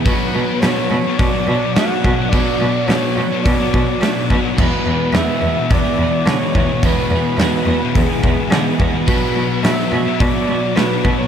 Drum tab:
CC |--------|--------|x-------|--------|
HH |o-o-o-o-|o-o-o-o-|--o-o-o-|o-o-o-o-|
SD |--o---o-|--o---o-|--o---o-|--o---o-|
BD |o---o--o|o---oo-o|o---o--o|o---oo-o|

CC |--------|
HH |o-o-o-o-|
SD |--o---o-|
BD |o---o--o|